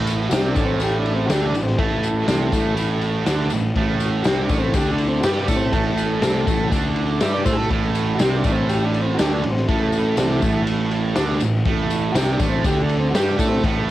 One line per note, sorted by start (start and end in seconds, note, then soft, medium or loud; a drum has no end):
0.00 0.28 A1 loud
0.00 0.30 A2 medium
0.00 0.31 A3 loud
0.07 ride medium
0.07 tambourine medium
0.29 0.54 C2 loud
0.29 0.55 C3 medium
0.29 0.56 C4 medium
0.29 0.32 F#4 medium
0.29 0.48 G4 medium
0.29 snare loud
0.29 ride medium
0.29 tambourine medium
0.48 0.64 D4 medium
0.55 1.26 A1 loud
0.55 1.28 A2 medium
0.55 1.29 A3 loud
0.55 kick loud
0.55 ride medium
0.55 tambourine medium
0.65 0.80 C4 medium
0.80 0.98 G4 medium
0.80 ride loud
0.80 tambourine medium
0.99 1.14 D4 medium
1.06 ride medium
1.06 tambourine soft
1.15 1.30 C4 medium
1.26 1.52 D2 loud
1.26 1.53 D3 medium
1.26 1.54 D4 loud
1.26 1.29 F#4 medium
1.26 ride medium
1.26 tambourine medium
1.30 1.46 G4 medium
1.30 snare loud
1.47 1.63 D4 medium
1.54 1.77 A1 medium
1.54 1.74 A2 medium
1.54 ride medium
1.54 tambourine medium
1.63 1.79 C4 medium
1.63 snare soft
1.78 2.25 A1 medium
1.78 2.26 A2 medium
1.78 2.73 E3 medium
1.78 2.27 A3 loud
1.78 2.74 A3 loud
1.78 kick loud
1.78 ride loud
2.03 ride medium
2.03 tambourine medium
2.27 2.51 C2 medium
2.27 2.51 C3 medium
2.27 2.52 C4 medium
2.27 snare loud
2.27 ride loud
2.27 tambourine medium
2.52 3.23 A1 loud
2.52 3.25 A2 loud
2.52 3.26 A3 loud
2.52 kick loud
2.52 ride medium
2.52 tambourine medium
2.77 ride medium
2.77 tambourine medium
3.01 ride medium
3.01 tambourine soft
3.25 3.50 D2 loud
3.25 3.50 D3 loud
3.25 3.51 D4 loud
3.25 snare loud
3.25 ride loud
3.25 tambourine medium
3.50 3.75 A1 medium
3.50 3.71 A2 medium
3.50 ride medium
3.50 tambourine medium
3.75 4.21 A1 medium
3.75 4.25 A2 medium
3.75 4.25 A3 loud
3.75 kick loud
3.75 ride medium
4.00 ride medium
4.00 tambourine medium
4.22 4.48 C2 loud
4.22 4.50 C3 medium
4.22 4.25 F#4 medium
4.22 snare loud
4.22 ride medium
4.22 tambourine medium
4.27 4.50 C4 loud
4.27 4.42 G4 loud
4.43 4.58 D4 medium
4.49 4.72 A1 medium
4.49 4.74 A2 loud
4.49 4.74 A3 loud
4.49 kick loud
4.49 ride medium
4.49 tambourine medium
4.59 4.74 C4 medium
4.74 5.20 D2 loud
4.74 5.24 D3 medium
4.74 5.24 D4 loud
4.74 4.91 G4 medium
4.74 kick loud
4.74 ride loud
4.74 tambourine medium
4.92 5.07 D4 medium
4.98 ride medium
4.98 tambourine soft
5.08 5.24 C4 medium
5.20 5.47 G2 loud
5.20 5.48 G3 medium
5.20 5.23 F#4 medium
5.20 snare loud
5.20 ride loud
5.20 tambourine loud
5.25 5.40 G4 loud
5.25 5.48 G4 loud
5.41 5.57 D4 medium
5.48 5.72 A2 medium
5.48 5.72 A3 loud
5.48 5.73 A4 loud
5.48 kick loud
5.48 snare soft
5.48 ride medium
5.48 tambourine medium
5.56 5.72 C4 medium
5.72 6.19 A1 medium
5.72 6.21 A2 loud
5.72 6.68 A3 loud
5.72 6.22 A3 loud
5.72 kick loud
5.72 ride loud
5.72 tambourine soft
5.97 ride medium
5.97 tambourine medium
6.22 6.46 C2 loud
6.22 6.46 C3 medium
6.22 6.47 C4 loud
6.22 snare medium
6.22 ride medium
6.22 tambourine medium
6.47 6.70 A1 medium
6.47 6.71 A2 medium
6.47 6.71 A3 medium
6.47 kick loud
6.47 ride medium
6.47 tambourine medium
6.71 7.18 D2 loud
6.71 7.20 D3 medium
6.71 7.21 D4 loud
6.71 kick loud
6.71 ride medium
6.71 tambourine medium
6.96 ride medium
7.20 7.44 G2 medium
7.20 7.45 G3 medium
7.20 7.46 G4 loud
7.20 7.33 E5 medium
7.20 snare loud
7.20 ride loud
7.20 tambourine medium
7.34 7.45 D5 medium
7.45 7.69 A2 medium
7.45 7.69 A3 medium
7.45 7.70 A4 medium
7.45 7.57 C5 medium
7.45 kick loud
7.45 snare soft
7.45 ride medium
7.45 tambourine medium
7.53 7.56 G#4 medium
7.57 7.70 A4 medium
7.57 snare soft
7.70 8.16 A1 medium
7.70 8.19 A2 medium
7.70 8.20 A3 loud
7.70 kick loud
7.70 ride medium
7.95 ride medium
7.95 tambourine medium
8.15 8.18 F#4 medium
8.19 8.43 C2 loud
8.19 8.44 C3 loud
8.19 8.44 C4 loud
8.19 8.36 G4 medium
8.19 snare loud
8.19 ride medium
8.19 tambourine medium
8.36 8.52 D4 medium
8.44 9.15 A1 medium
8.44 9.18 A2 medium
8.44 9.19 A3 loud
8.44 kick loud
8.44 ride medium
8.44 tambourine medium
8.52 8.68 C4 medium
8.69 8.85 G4 medium
8.69 ride medium
8.69 tambourine medium
8.84 9.01 D4 loud
8.94 ride medium
8.94 tambourine soft
9.01 9.18 C4 medium
9.14 9.43 D3 medium
9.14 9.18 F#4 medium
9.19 9.42 D2 medium
9.19 9.43 D4 loud
9.19 9.35 G4 medium
9.19 snare loud
9.19 ride loud
9.19 tambourine medium
9.34 9.51 D4 medium
9.44 9.67 A1 medium
9.44 9.63 A2 medium
9.44 ride medium
9.51 9.67 C4 medium
9.56 snare soft
9.67 10.15 A1 medium
9.67 10.17 A2 medium
9.67 10.63 E3 medium
9.67 10.64 A3 loud
9.67 10.18 A3 loud
9.67 kick loud
9.67 ride loud
9.92 ride medium
9.92 tambourine medium
10.17 10.40 C2 medium
10.17 10.42 C3 medium
10.17 10.42 C4 loud
10.17 snare loud
10.17 ride loud
10.17 tambourine medium
10.42 11.13 A1 loud
10.42 11.15 A2 medium
10.42 11.17 A3 loud
10.42 kick loud
10.42 ride medium
10.42 tambourine medium
10.67 ride loud
10.67 tambourine medium
10.91 ride medium
10.91 tambourine soft
11.15 11.40 D2 loud
11.15 11.40 D3 medium
11.15 11.41 D4 loud
11.15 snare loud
11.15 ride medium
11.15 tambourine medium
11.40 11.64 A1 medium
11.40 11.61 A2 medium
11.40 ride medium
11.40 tambourine medium
11.65 12.12 A1 loud
11.65 12.14 A2 medium
11.65 12.15 A3 loud
11.65 kick loud
11.65 ride medium
11.90 ride medium
11.90 tambourine medium
12.12 12.38 C2 loud
12.12 12.39 C3 medium
12.12 12.15 F#4 medium
12.12 snare loud
12.12 ride medium
12.12 tambourine medium
12.16 12.40 C4 medium
12.16 12.32 G4 loud
12.33 12.49 D4 medium
12.39 12.63 A1 medium
12.39 12.64 A2 medium
12.39 12.65 A3 loud
12.39 kick loud
12.39 ride medium
12.39 tambourine medium
12.49 12.65 C4 medium
12.64 13.11 D2 loud
12.64 13.14 D3 medium
12.64 13.14 D4 medium
12.64 12.82 G4 medium
12.64 kick loud
12.64 ride medium
12.64 tambourine medium
12.82 12.98 D4 medium
12.89 ride medium
12.89 tambourine soft
13.00 13.15 C4 medium
13.10 13.37 G2 medium
13.10 13.38 G3 medium
13.10 13.14 F#4 medium
13.15 13.31 G4 medium
13.15 13.39 G4 loud
13.15 snare loud
13.15 ride medium
13.15 tambourine loud
13.33 13.48 D4 medium
13.39 13.62 A2 medium
13.39 13.63 A3 medium
13.39 13.64 A4 loud
13.39 kick loud
13.39 snare soft
13.39 ride medium
13.39 tambourine medium
13.49 13.64 C4 medium
13.49 snare soft
13.64 13.91 A1 loud
13.64 13.91 A2 medium
13.64 13.91 A3 loud
13.64 kick loud
13.64 ride loud
13.64 tambourine soft